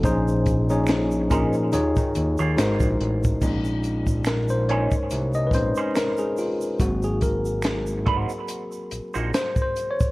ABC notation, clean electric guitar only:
X:1
M:4/4
L:1/16
Q:"Swing 16ths" 1/4=71
K:Bbm
V:1 name="Clean electric guitar"
z6 [DEAc] z4 [B,FAd] z4 | z6 [DEAc] z4 [DEAc] z4 | z6 [B,EGc] z4 [B,EGc] z4 |]